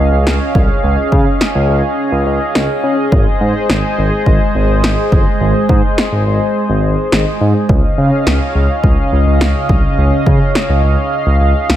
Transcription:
Already playing: analog synth bass C#2, analog synth pad C#4 G#4 D#5 F5
0.12 analog synth bass C#2
0.26 analog synth bass C#2, snare
0.55 analog synth bass C2, kick
0.84 analog synth bass C#2
1.12 analog synth bass C#3, kick
1.41 snare
1.55 analog synth bass C#2
1.69 analog synth bass C#2
2.12 analog synth bass C#2
2.26 analog synth bass C#2
2.55 analog synth bass C#2, snare
2.83 analog synth bass C#3
3.12 analog synth bass G#1, analog synth pad G#3 C5, kick
3.41 analog synth bass G#2
3.69 analog synth bass G#1, snare
3.98 analog synth bass G#1
4.26 analog synth bass G#1, kick
4.55 analog synth bass G#1
4.69 analog synth bass G#1
4.84 analog synth bass G#1, snare
5.12 analog synth bass G1, kick
5.41 analog synth bass G#1
5.69 analog synth bass G#2, kick
5.98 snare
6.12 analog synth bass G#1
6.26 analog synth bass G#1
6.69 analog synth bass G#1
6.84 analog synth bass G#1
7.12 analog synth bass G#1, snare
7.41 analog synth bass G#2
7.69 analog synth bass C#2, analog synth pad C#3 C#4 D#5 F5, kick
7.98 analog synth bass C#3
8.27 analog synth bass C#2, snare
8.55 analog synth bass C#2
8.84 analog synth bass C#2, kick
9.12 analog synth bass C#2
9.27 analog synth bass C#2
9.41 analog synth bass C#2, snare
9.69 analog synth bass C2, kick
9.98 analog synth bass C#2
10.26 analog synth bass C#3, kick
10.55 snare
10.69 analog synth bass C#2
10.84 analog synth bass C#2
11.27 analog synth bass C#2
11.41 analog synth bass C#2
11.69 analog synth bass C#2, snare

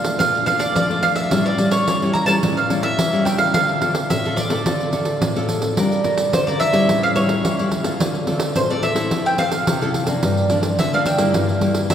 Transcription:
Already playing: nylon-string guitar F3 A3 D4 F4, mandolin F5
0.04 pandeiro
0.19 nylon-string guitar A#2 A3 D4 F4, mandolin F5, pandeiro
0.35 pandeiro
0.46 nylon-string guitar A3 D4 F4, mandolin F5, pandeiro
0.59 mandolin D5, pandeiro
0.75 nylon-string guitar F3, mandolin D5, pandeiro
0.90 nylon-string guitar A3 D4 F4, pandeiro
1.03 mandolin F5, pandeiro
1.15 mandolin E5, pandeiro
1.30 nylon-string guitar A2 G3 C#4 E4, pandeiro
1.46 mandolin D5, pandeiro
1.58 nylon-string guitar G3 C#4 E4, pandeiro
1.71 mandolin C#5, pandeiro
1.87 nylon-string guitar E3, pandeiro
2.02 nylon-string guitar G3 C#4 E4, pandeiro
2.13 mandolin A#5, pandeiro
2.26 nylon-string guitar G3 C#4 E4, mandolin A5, pandeiro
2.43 nylon-string guitar A2 G3 C#4 E4, pandeiro
2.57 mandolin F5, pandeiro
2.70 nylon-string guitar G3 C#4 E4, pandeiro
2.83 mandolin E5, pandeiro
2.98 nylon-string guitar E3, pandeiro
3.13 nylon-string guitar G3 C#4 E4, pandeiro
3.25 mandolin G5, pandeiro
3.38 mandolin F5, pandeiro
3.54 nylon-string guitar D3 C4 F4 A4, mandolin F5, pandeiro
3.69 pandeiro
3.81 nylon-string guitar C4 F4 A4, pandeiro
3.95 pandeiro
4.10 nylon-string guitar A2, mandolin E5, pandeiro
4.25 nylon-string guitar C4 F4 A4, pandeiro
4.36 mandolin D5, pandeiro
4.50 nylon-string guitar C4 F4 A4, pandeiro
4.66 nylon-string guitar D3 C4 F4 A4, pandeiro
4.80 pandeiro
4.93 nylon-string guitar C4 F4 A4, pandeiro
5.05 pandeiro
5.21 nylon-string guitar A2, pandeiro
5.36 nylon-string guitar C4 F4 A4, pandeiro
5.49 pandeiro
5.62 pandeiro
5.77 nylon-string guitar G3 D4 F4 A#4, pandeiro
5.92 pandeiro
6.03 nylon-string guitar D4 F4 A#4, pandeiro
6.18 pandeiro
6.32 nylon-string guitar D3, mandolin C5, pandeiro
6.47 nylon-string guitar D4 F4 A#4, mandolin D5, pandeiro
6.60 mandolin E5, pandeiro
6.73 nylon-string guitar G3 C#4 E4, pandeiro
6.88 nylon-string guitar A2, pandeiro
7.03 mandolin F5, pandeiro
7.15 nylon-string guitar G3 C#4 E4, mandolin C#5, pandeiro
7.29 pandeiro
7.44 nylon-string guitar E3, pandeiro
7.59 nylon-string guitar G3 C#4 E4, pandeiro
7.71 pandeiro
7.84 nylon-string guitar C4 F4 A4, pandeiro
8.00 nylon-string guitar D3, pandeiro
8.15 pandeiro
8.27 nylon-string guitar C4 F4 A4, pandeiro
8.40 pandeiro
8.55 nylon-string guitar A2, mandolin C5, pandeiro
8.70 nylon-string guitar C4 F4 A4, mandolin D5, pandeiro
8.83 mandolin E5, pandeiro
8.95 nylon-string guitar C4 E4 A4, pandeiro
9.11 nylon-string guitar F3, pandeiro
9.26 mandolin G5, pandeiro
9.38 nylon-string guitar C4 E4 A4, mandolin F5, pandeiro
9.52 pandeiro
9.67 nylon-string guitar C3, pandeiro
9.81 nylon-string guitar C4 E4 A4, pandeiro
9.94 pandeiro
10.07 nylon-string guitar F3 A#3 D4, pandeiro
10.23 nylon-string guitar G2, pandeiro
10.37 pandeiro
10.50 nylon-string guitar F3 A#3 D4, pandeiro
10.63 pandeiro
10.79 nylon-string guitar D3, mandolin E5, pandeiro
10.93 nylon-string guitar F3 A#3 D4, mandolin F5, pandeiro
11.06 mandolin G5, pandeiro
11.18 nylon-string guitar G3 A#3 E4, pandeiro
11.34 nylon-string guitar G2, pandeiro
11.49 pandeiro
11.61 nylon-string guitar G3 A#3 E4, pandeiro
11.75 pandeiro
11.90 nylon-string guitar G2, mandolin E5, pandeiro

